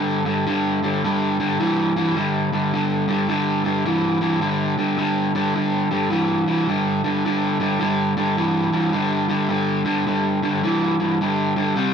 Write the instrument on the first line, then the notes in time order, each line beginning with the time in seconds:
overdriven electric guitar
Already playing: G2 D3
0.25 G2 D3
0.47 G2 D3
0.83 G2 D3
1.04 G2 D3
1.40 G2 D3
1.60 G2 E3
1.96 G2 E3
2.16 G2 D3
2.53 G2 D3
2.73 G2 D3
3.08 G2 D3
3.29 G2 D3
3.64 G2 D3
3.86 G2 E3
4.21 G2 E3
4.41 G2 D3
4.78 G2 D3
4.98 G2 D3
5.35 G2 D3
5.55 G2 D3
5.91 G2 D3
6.10 G2 E3
6.46 G2 E3
6.68 G2 D3
7.04 G2 D3
7.25 G2 D3
7.60 G2 D3
7.80 G2 D3
8.17 G2 D3
8.37 G2 E3
8.73 G2 E3
8.92 G2 D3
9.28 G2 D3
9.49 G2 D3
9.85 G2 D3
10.07 G2 D3
10.43 G2 D3
10.63 G2 E3
11.00 G2 E3
11.21 G2 D3
11.56 G2 D3
11.76 C3 G3